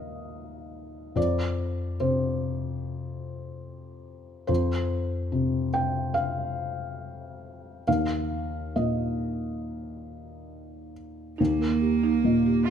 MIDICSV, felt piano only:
0, 0, Header, 1, 2, 480
1, 0, Start_track
1, 0, Tempo, 834492
1, 671, Time_signature, 4, 2, 24, 8
1, 4027, Tempo, 882353
1, 5947, Tempo, 852273
1, 7169, End_track
2, 0, Start_track
2, 0, Title_t, "Felt piano"
2, 0, Program_c, 0, 0
2, 0, Control_c, 0, 64, 127
2, 0, Note_on_c, 0, 39, 37
2, 0, Note_on_c, 0, 46, 28
2, 0, Note_on_c, 0, 75, 47
2, 0, Note_on_c, 0, 77, 45
2, 651, Note_off_c, 0, 39, 0
2, 652, Note_off_c, 0, 75, 0
2, 665, Note_on_c, 0, 41, 38
2, 670, Note_on_c, 0, 74, 50
2, 672, Note_off_c, 0, 46, 0
2, 681, Control_c, 0, 64, 0
2, 683, Note_off_c, 0, 77, 0
2, 787, Control_c, 0, 64, 127
2, 1128, Note_off_c, 0, 74, 0
2, 1151, Note_on_c, 0, 72, 51
2, 1152, Note_on_c, 0, 48, 33
2, 2557, Note_off_c, 0, 41, 0
2, 2560, Note_off_c, 0, 72, 0
2, 2573, Note_on_c, 0, 72, 53
2, 2581, Note_on_c, 0, 41, 44
2, 2584, Note_off_c, 0, 48, 0
2, 2594, Control_c, 0, 64, 0
2, 2704, Control_c, 0, 64, 127
2, 3061, Note_on_c, 0, 48, 31
2, 3272, Note_off_c, 0, 72, 0
2, 3299, Note_on_c, 0, 79, 58
2, 3523, Note_off_c, 0, 79, 0
2, 3533, Note_on_c, 0, 77, 56
2, 4475, Note_off_c, 0, 77, 0
2, 4478, Note_off_c, 0, 41, 0
2, 4500, Note_off_c, 0, 48, 0
2, 4503, Note_on_c, 0, 77, 54
2, 4506, Note_on_c, 0, 39, 37
2, 4511, Control_c, 0, 64, 0
2, 4591, Control_c, 0, 64, 127
2, 4961, Note_off_c, 0, 77, 0
2, 4983, Note_on_c, 0, 75, 33
2, 4984, Note_on_c, 0, 46, 28
2, 6168, Note_off_c, 0, 75, 0
2, 6413, Note_off_c, 0, 39, 0
2, 6434, Note_off_c, 0, 46, 0
2, 6438, Note_on_c, 0, 39, 43
2, 6444, Control_c, 0, 64, 0
2, 6552, Control_c, 0, 64, 127
2, 6911, Note_on_c, 0, 46, 34
2, 7169, Note_off_c, 0, 39, 0
2, 7169, Note_off_c, 0, 46, 0
2, 7169, End_track
0, 0, End_of_file